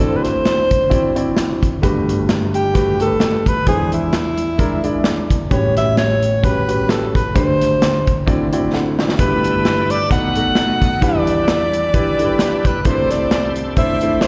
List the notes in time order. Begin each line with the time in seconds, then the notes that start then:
0.00 D2 D3 C4 E4 F#4 A4 D5
0.16 B4
0.23 C5, snare, closed hi-hat
0.45 snare, closed hi-hat
0.71 kick, closed hi-hat
0.90 C4 E4 F#4 D5, kick, closed hi-hat
1.15 C4 E4 F#4 D5, closed hi-hat
1.37 snare, closed hi-hat
1.63 kick, closed hi-hat
1.82 G1 G2 A3 F#4 G4 B4, kick, closed hi-hat
2.09 closed hi-hat
2.29 snare, closed hi-hat
2.54 G4, closed hi-hat
2.74 A3 F#4 G4 B4, kick, snare, closed hi-hat
3.00 A3 F#4 G4 A4 A#4, closed hi-hat
3.07 B4
3.20 snare, closed hi-hat
3.46 B4, kick, closed hi-hat
3.67 E2 E3 G#3 D4 E4 G#4 C5, kick, closed hi-hat
3.92 E4, closed hi-hat
4.13 snare, closed hi-hat
4.38 closed hi-hat
4.58 G#3 D4 E4 A#4, kick, closed hi-hat
4.83 G#3 D4 E4 D5, closed hi-hat
5.04 snare, closed hi-hat
5.30 kick, closed hi-hat
5.50 A1 A2 G3 C#4 F#4 B4 C#5, kick, closed hi-hat
5.77 E5, snare, closed hi-hat
5.97 C#5, snare, closed hi-hat
6.22 closed hi-hat
6.43 G3 C#4 F#4 B4, kick, closed hi-hat
6.68 G3 C#4 F#4 B4, closed hi-hat
6.89 A4, snare, closed hi-hat
7.15 B4, kick, closed hi-hat
7.34 D2 D3 A3 D4 G4 C5, kick, closed hi-hat
7.61 snare, closed hi-hat
7.82 snare, closed hi-hat
8.07 kick, closed hi-hat
8.26 D2 D3 C4 E4 F#4 D5, kick, closed hi-hat
8.52 C4 E4 F#4 D5, closed hi-hat
8.73 A4 F#5, snare
8.99 F#4 D5, snare
9.09 snare
9.19 G1 G2 A3 E4 G4 B4, kick, closed hi-hat
9.44 closed hi-hat
9.65 snare, closed hi-hat
9.90 D5, closed hi-hat
10.10 B1 B2 A3 D#4 F#4 A#4 B4 F#5, kick, snare, closed hi-hat
10.16 B4
10.35 A3 D#4 F#4 A4, closed hi-hat
10.55 snare, closed hi-hat
10.82 kick, closed hi-hat
11.01 E2 E3 G3 D4 E4 B4 D5, kick, closed hi-hat
11.27 closed hi-hat
11.48 snare, closed hi-hat
11.73 closed hi-hat
11.93 G3 D4 E4 B4, kick, closed hi-hat
12.19 G3 D4 E4 A4, closed hi-hat
12.25 B4
12.39 snare, closed hi-hat
12.65 B4, kick, closed hi-hat
12.85 C2 C3 A3 D4 E4 C5, kick, closed hi-hat
13.11 D5, snare, closed hi-hat
13.31 snare, closed hi-hat
13.56 closed hi-hat
13.77 A3 D4 E4 C5 E5, kick, closed hi-hat
14.01 A3 D4 E4 C5, closed hi-hat
14.21 C5, snare, closed hi-hat